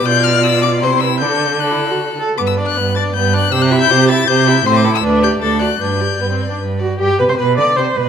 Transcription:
<<
  \new Staff \with { instrumentName = "Violin" } { \time 3/4 \key g \major \tempo 4 = 155 g'''8 f'''8 e'''8 d'''8 c'''8 e'''8 | g'''4 fis'''4. r8 | d'''16 e'''8 fis'''8. a'''8 g'''8 fis'''8 | e'''16 fis'''8 g'''8. a'''8 g'''4 |
c'''16 d'''8 e'''8. g'''8 a'''8 fis'''8 | g'''2 r4 | g'8 b'16 c''16 b'8 d''8 c''8 b'8 | }
  \new Staff \with { instrumentName = "Violin" } { \time 3/4 \key g \major d''2 c''8 b'8 | a'4 a'4. r8 | b'8 d''8 b'8 d''8 b'8 d''8 | c''8 e''8 c''8 e''8 c''8 e''8 |
c''8 a'8 b'8 d''8 a'8 d''8 | b'8 d''8 b'8 d''8 b'8 d''8 | g'8 b'16 c''16 b'8 d''8 c''8 b'8 | }
  \new Staff \with { instrumentName = "Viola" } { \time 3/4 \key g \major f'2 e'4 | d'4 d'16 e'8 fis'8. a'8 | b8 d'8 b8 d'8 b8 d'8 | g'8 e'8 g'8 e'8 g'8 e'8 |
c'8 e'8 d'8 g'8 d'8 fis'8 | d'8 g'8 b16 c'8 d'8. fis'8 | g'8 b'16 c''16 b'8 d''8 c''8 b'8 | }
  \new Staff \with { instrumentName = "Cello" } { \clef bass \time 3/4 \key g \major b,2 c4 | d2~ d8 r8 | g,4 g,4 g,4 | c4 c4 c4 |
a,4 d,4 d,4 | g,4 g,4 g,4 | g,8 b,16 c16 b,8 d8 c8 b,8 | }
>>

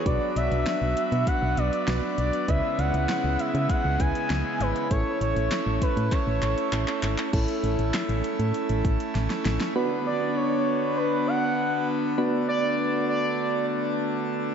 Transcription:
<<
  \new Staff \with { instrumentName = "Analog synth lead" } { \time 4/4 \key b \dorian \tempo 4 = 99 d''8 e''4. fis''8 d''4 d''8 | e''8 fis''4 e''8 fis''8 gis''4 b'8 | cis''8 cis''4 b'8 cis''4. r8 | r1 |
r8 d''8 cis''4 b'8 fis''4 r8 | r8 d''4 d''4 r4. | }
  \new Staff \with { instrumentName = "Synth keys" } { \time 4/4 \key b \dorian <d' fis' b'>2. <d' fis' b'>4 | <cis' e' b'>2~ <cis' e' b'>8 <cis' e' b'>4. | <cis' e' a'>2. <cis' e' a'>4 | <cis' e' a'>1 |
<b d' fis' b'>1 | <b d' fis' b'>1 | }
  \new Staff \with { instrumentName = "Pipe organ" } { \time 4/4 \key b \dorian d'1 | e'1~ | e'1 | e'1 |
d'1~ | d'1 | }
  \new Staff \with { instrumentName = "Pipe organ" } { \time 4/4 \key b \dorian << { r1 | cis1 | cis'1 | cis'1 |
b1 | a1 | } \\ { <fis b>1 | gis1 | a1 | a1 |
d1~ | d1 | } >> }
  \new Staff \with { instrumentName = "FM bass" } { \clef bass \time 4/4 \key b \dorian b,,16 r16 b,,16 b,,16 r16 b,,16 r16 b,16 r16 b,,16 b,,16 r16 b,,16 r16 b,,16 r16 | cis,16 r16 cis,16 cis,16 r16 cis,16 r16 cis16 r16 cis,16 cis,16 r16 cis,16 r16 gis,,16 r16 | a,,16 r16 a,,16 a,,16 r16 a,,16 r16 a,16 r16 a,,16 a,,16 r16 a,,16 r16 gis,,16 r16 | a,,16 r16 a,,16 a,,16 r16 a,,16 r16 a,16 r16 a,,16 a,,16 r16 a,,16 r16 a,,16 r16 |
r1 | r1 | }
  \new DrumStaff \with { instrumentName = "Drums" } \drummode { \time 4/4 <hh bd>8 hh16 hh16 <hh sn>8 hh16 hh16 <hh bd>8 hh16 hh16 <hh sn>8 hh16 hh16 | <hh bd>8 hh16 hh16 <hh sn>8 hh16 hh16 <hh bd>8 <hh bd>16 hh16 <hh sn>8 hh16 hh16 | <hh bd>8 hh16 hh16 <hc hh sn>8 <hh bd>16 hh16 <hc hh bd>8 <hc hh>16 hh16 <hc hh>16 hc16 <hc hh>16 <hc hh>16 | <cymc hh bd>16 hh16 hh16 hh16 <hc hh sn>16 hh16 hh16 hh16 hh16 hh16 <hh bd>16 hh16 <hh sn>16 <hh sn>16 <hh sn>16 <hh sn>16 |
r4 r4 r4 r4 | r4 r4 r4 r4 | }
>>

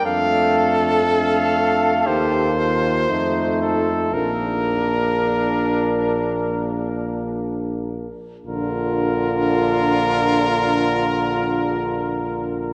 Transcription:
<<
  \new Staff \with { instrumentName = "Trumpet" } { \time 4/4 \key bes \major \tempo 4 = 56 f''8 r8 f''4 c''4. a'8 | bes'2. r4 | bes'1 | }
  \new Staff \with { instrumentName = "Trumpet" } { \time 4/4 \key bes \major a'2 g'8 f'8 ees'8 r8 | d'2.~ d'8 r8 | f'1 | }
  \new Staff \with { instrumentName = "French horn" } { \time 4/4 \key bes \major d'4 d'4 ees'4 ees'4 | d'2.~ d'8 r8 | d'1 | }
  \new Staff \with { instrumentName = "Trombone" } { \time 4/4 \key bes \major a4 a4 bes4 a4 | bes2.~ bes8 r8 | d1 | }
  \new Staff \with { instrumentName = "Bass trombone" } { \clef bass \time 4/4 \key bes \major f,2 ees,4 f,4 | bes,,2.~ bes,,8 r8 | bes,,1 | }
>>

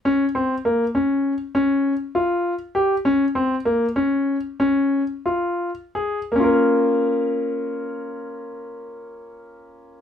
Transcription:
\new Staff \with { instrumentName = "Grand piano" } { \time 5/8 \key bes \minor \tempo 4 = 93 des'8 c'8 bes8 des'4 | des'4 f'4 g'8 | des'8 c'8 bes8 des'4 | des'4 f'4 aes'8 |
<bes des' f' bes'>2~ <bes des' f' bes'>8~ | <bes des' f' bes'>2~ <bes des' f' bes'>8 | }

